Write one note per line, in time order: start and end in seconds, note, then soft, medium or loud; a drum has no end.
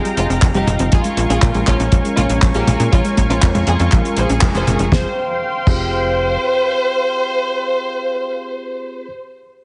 0.00 0.52 C4 medium
0.00 0.52 F4 medium
0.00 0.52 G4 medium
0.00 0.52 G#4 medium
0.00 0.88 F5 medium
0.00 0.88 G5 medium
0.00 0.90 A#5 medium
0.05 0.15 G3 loud
0.05 closed hi-hat medium
0.17 0.27 F1 medium
0.17 0.23 G#3 medium
0.17 0.42 G#3 medium
0.17 0.25 F4 loud
0.17 closed hi-hat medium
0.30 0.40 F1 medium
0.30 0.42 C4 loud
0.30 closed hi-hat medium
0.42 0.52 F1 medium
0.42 0.52 F3 loud
0.42 kick loud
0.42 clap loud
0.42 closed hi-hat medium
0.54 0.65 F1 medium
0.54 0.65 G3 loud
0.54 0.89 G3 medium
0.54 0.89 C4 medium
0.54 0.80 D#4 medium
0.54 0.89 F4 medium
0.54 0.63 G4 medium
0.54 0.89 G4 medium
0.54 closed hi-hat medium
0.67 0.77 F1 loud
0.67 0.73 G#3 medium
0.67 closed hi-hat medium
0.67 high tom medium
0.79 0.90 F1 medium
0.79 0.92 C4 loud
0.79 closed hi-hat medium
0.92 1.02 A#1 loud
0.92 1.02 F3 loud
0.92 1.89 G#3 medium
0.92 1.89 C#4 medium
0.92 1.89 F4 medium
0.92 1.17 F4 medium
0.92 1.00 G#4 medium
0.92 1.89 A#4 medium
0.92 4.88 A#4 medium
0.92 4.88 F5 medium
0.92 4.88 G#5 medium
0.92 4.88 C#6 medium
0.92 kick loud
0.92 closed hi-hat medium
1.04 1.15 G#3 loud
1.04 closed hi-hat medium
1.17 1.27 A#1 loud
1.17 1.23 A#3 medium
1.17 closed hi-hat medium
1.30 1.40 A#1 medium
1.30 1.42 C#4 loud
1.30 1.55 F4 medium
1.30 1.38 G#4 loud
1.30 closed hi-hat medium
1.42 1.52 A#2 loud
1.42 1.52 F3 loud
1.42 kick loud
1.42 clap loud
1.42 closed hi-hat medium
1.54 1.65 A#1 medium
1.54 1.65 G#3 loud
1.54 closed hi-hat medium
1.67 1.77 A#1 loud
1.67 1.73 A#3 medium
1.67 2.01 C#4 medium
1.67 1.75 F4 loud
1.67 kick medium
1.67 clap medium
1.67 closed hi-hat loud
1.80 1.90 A#1 medium
1.80 1.92 C#4 loud
1.80 closed hi-hat medium
1.92 2.02 A#1 loud
1.92 2.02 F3 loud
1.92 2.52 G#3 medium
1.92 2.52 C#4 medium
1.92 2.52 F4 medium
1.92 2.52 A#4 medium
1.92 kick loud
1.92 closed hi-hat medium
2.05 2.15 G#3 loud
2.05 closed hi-hat medium
2.17 2.27 A#1 medium
2.17 2.23 A#3 medium
2.17 2.42 C#4 medium
2.17 2.25 F4 medium
2.17 closed hi-hat medium
2.17 high tom medium
2.29 2.40 A#1 medium
2.29 2.42 C#4 loud
2.29 closed hi-hat medium
2.42 2.52 A#1 medium
2.42 2.52 F3 loud
2.42 kick loud
2.42 clap loud
2.42 closed hi-hat medium
2.54 2.65 A#1 medium
2.54 2.89 G#3 medium
2.54 2.65 G#3 loud
2.54 2.80 A#3 medium
2.54 2.89 C#4 medium
2.54 2.89 F4 medium
2.54 2.63 G4 medium
2.54 2.89 G#4 medium
2.54 closed hi-hat medium
2.67 2.77 A#1 loud
2.67 2.73 A#3 medium
2.67 closed hi-hat medium
2.67 high tom medium
2.80 2.90 A#2 medium
2.80 2.92 C#4 loud
2.80 closed hi-hat medium
2.92 3.02 A#1 loud
2.92 3.02 F3 loud
2.92 3.89 G#3 medium
2.92 3.89 C#4 medium
2.92 3.17 C#4 medium
2.92 3.00 F4 loud
2.92 3.89 F4 medium
2.92 3.89 A#4 medium
2.92 kick loud
2.92 closed hi-hat medium
3.05 3.15 G#3 loud
3.05 closed hi-hat medium
3.17 3.27 A#1 medium
3.17 3.23 A#3 medium
3.17 kick medium
3.17 closed hi-hat medium
3.17 high tom medium
3.30 3.40 A#1 medium
3.30 3.42 C#4 loud
3.30 3.55 C#4 medium
3.30 3.38 F4 medium
3.30 closed hi-hat medium
3.42 3.52 F2 loud
3.42 3.52 F3 loud
3.42 kick loud
3.42 clap loud
3.42 closed hi-hat medium
3.55 3.65 F2 medium
3.55 3.65 G#3 loud
3.55 closed hi-hat medium
3.55 high tom medium
3.67 3.77 F2 medium
3.67 3.73 A#3 medium
3.67 4.01 F4 medium
3.67 3.75 G#4 medium
3.67 closed hi-hat medium
3.79 3.90 F2 medium
3.79 3.92 C#4 loud
3.79 closed hi-hat medium
3.92 4.02 A#1 loud
3.92 4.02 F3 loud
3.92 4.40 G#3 medium
3.92 4.40 C#4 medium
3.92 4.40 F4 medium
3.92 4.40 A#4 medium
3.92 kick loud
3.92 clap medium
3.92 closed hi-hat loud
4.05 4.15 G#3 loud
4.05 closed hi-hat medium
4.17 4.27 A#1 loud
4.17 4.23 A#3 medium
4.17 4.42 G#4 medium
4.17 4.25 C5 medium
4.17 closed hi-hat medium
4.29 4.40 A#1 medium
4.29 4.42 C#4 loud
4.29 closed hi-hat medium
4.41 4.52 F1 loud
4.41 4.52 F3 loud
4.41 4.64 G#3 medium
4.41 4.64 C#4 medium
4.41 4.64 F4 medium
4.41 4.64 A#4 medium
4.41 kick loud
4.41 clap loud
4.41 closed hi-hat medium
4.55 4.65 F1 medium
4.55 4.65 G#3 loud
4.55 4.80 G#4 medium
4.55 4.63 C5 loud
4.55 closed hi-hat medium
4.67 4.77 F1 loud
4.67 4.89 G#3 medium
4.67 4.73 A#3 medium
4.67 4.89 C#4 medium
4.67 4.89 F4 medium
4.67 4.89 A#4 medium
4.67 closed hi-hat medium
4.67 high tom medium
4.79 4.90 F1 medium
4.79 4.92 C#4 loud
4.79 closed hi-hat medium
4.92 5.06 F1 loud
4.92 5.06 F3 medium
4.92 5.06 G3 medium
4.92 5.06 C4 medium
4.92 5.06 F4 medium
4.92 5.06 G#4 medium
4.92 8.32 C5 medium
4.92 5.06 C5 medium
4.92 8.32 F5 medium
4.92 8.32 G5 medium
4.92 8.32 C6 medium
4.92 kick loud
4.92 snare medium
5.67 6.38 F1 loud
5.67 5.81 F3 medium
5.67 9.07 C4 medium
5.67 9.07 F4 medium
5.67 9.07 G4 medium
5.67 9.07 G#4 medium
5.67 9.07 C5 loud
5.67 kick loud
5.67 crash medium